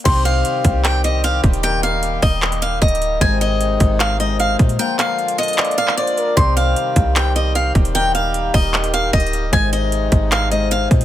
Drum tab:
CC |x-----------------------------------------------------------------------------------------------|------------------------------------------------------------------------------------------------|------------------------------------------------------------------------------------------------|------------------------------------------------------------------------------------------------|
HH |x-----------x-----------x-----------x-----------x-----------x-----------x-----------x-----x-----|x-----------x-----------x-----------o-----------x-----x-----x-----------x---x---x---x-----------|x-----------x-----------x-----------x-----------x-----------x-----------x-----------x-----x-----|x-----------x-----------x-----x-----x--x--x--x--x---x---x---x-----------x-----x-----x-----------|
CP |------------------------------------------------x-----------------------------------------------|------------------------------------------------x-----------------------------------------------|------------------------------------------------x-----------------------------------------------|------------x-----------------------------------x-----------------x-----------------------------|
BD |o-----------------------------------o-----------------------------------------------o-----------|------------------------------------o-----------------------------------o-----------------------|o-----------------------------------o-----------------------------------------------o-----------|------------------------------------------------------------------------------------------------|

CC |------------------------------------------------------------------------------------------------|------------------------------------------------------------------------------------------------|------------------------------------------------------------------------------------------------|
HH |x-----------x-----------x-----------x-----------x-----------x-----------x-----------x-----x-----|x-----------x-----------x-----------o-----------x-----x-----x-----------x---x---x---x-----------|x-----------x-----------x-----------x-----------x-----------x-----------x-----------x-----x-----|
CP |------------------------------------------------x-----------------------------------------------|------------------------------------------------x-----------------------------------------------|------------------------------------------------x-----------------------------------------------|
BD |o-----------------------------------o-----------------------------------------------o-----------|------------------------------------o-----------------------------------o-----------------------|o-----------------------------------o-----------------------------------------------o-----------|